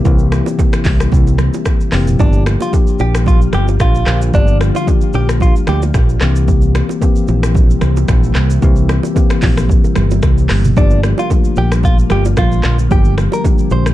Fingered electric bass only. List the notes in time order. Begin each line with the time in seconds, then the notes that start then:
0.05 C2
0.85 C2
1.12 C2
1.93 F1
2.19 G1
3.00 A#1
3.53 G1
3.80 A#1
4.07 A#1
4.34 G1
5.14 A#1
5.68 D2
5.94 A#1
6.21 C2
7.28 A#1
7.82 C2
8.09 A#1
8.36 C2
8.62 C2
9.42 A#1
9.96 G1
10.23 C2
10.50 G1
10.77 G1
11.57 A#1
12.11 G1
12.37 A#1
12.64 A#1
12.91 G1
13.71 A#1